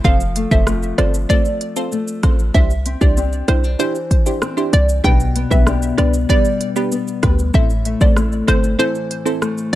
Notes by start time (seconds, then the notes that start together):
Already playing: A3 C4
0.04 F1 F3 C4 F4 A4 C5 F5, kick, shaker
0.20 shaker
0.36 A3, closed hi-hat, shaker
0.51 F1 C4 F4 A4 C5 E5, kick, shaker
0.67 A3 C4 F4, cross-stick, shaker
0.83 shaker
0.98 G1 C4 F4 A4 C5 D5, cross-stick, closed hi-hat, shaker
1.14 shaker
1.29 A3 C4 F4 A4 C5 D5, kick, shaker
1.45 shaker
1.61 closed hi-hat, shaker
1.76 C4 F4 A4 C5, shaker
1.92 A3, shaker
2.08 shaker
2.23 A1 C4 F4 A4 C5, kick, cross-stick, closed hi-hat, shaker
2.39 shaker
2.54 C2 D4 E4 G4 C5 E5, kick, shaker
2.70 shaker
2.86 C4, closed hi-hat, shaker
3.01 C2 D4 E4 G4 C5 D5, kick, shaker
3.17 C4 D4 G4, shaker
3.33 shaker
3.48 B1 C4 D4 E4 G4 C5, cross-stick, closed hi-hat, shaker
3.64 D4, shaker
3.79 E3 D4 E4 G4 C5, shaker
3.95 shaker
4.11 kick, closed hi-hat, shaker
4.26 D4 E4 G4 C5, shaker
4.42 C4, cross-stick, shaker
4.57 D4 E4 G4 C5, shaker
4.73 C2 D5, closed hi-hat, shaker
4.89 shaker
5.04 B1 B2 B3 D4 G4 B4 G5, kick, shaker
5.20 shaker
5.36 B3, closed hi-hat, shaker
5.50 B1 B3 D4 G4 B4 E5, kick, shaker
5.67 B3 D4 G4, cross-stick, shaker
5.82 shaker
5.97 C2 B3 D4 G4 B4 D5, cross-stick, closed hi-hat, shaker
6.14 shaker
6.29 G3 B3 D4 G4 B4 D5, kick, shaker
6.45 shaker
6.61 closed hi-hat, shaker
6.76 B3 D4 G4 B4, shaker
6.92 B3, shaker
7.08 shaker
7.23 D2 B3 D4 G4 B4, kick, cross-stick, closed hi-hat, shaker
7.39 shaker
7.54 A1 A2 C4 E4 A4 C5 E5, kick, shaker
7.70 shaker
7.85 A3, closed hi-hat, shaker
8.01 A1 C4 E4 A4 C5 D5, kick, shaker
8.16 A3 C4 E4, cross-stick, shaker
8.32 shaker
8.47 G1 C4 E4 A4 C5, cross-stick, closed hi-hat, shaker
8.64 shaker
8.79 E3 C4 E4 A4 C5, shaker
8.95 shaker
9.11 closed hi-hat, shaker
9.25 C4 E4 A4 C5, shaker
9.42 A3, cross-stick, shaker
9.58 shaker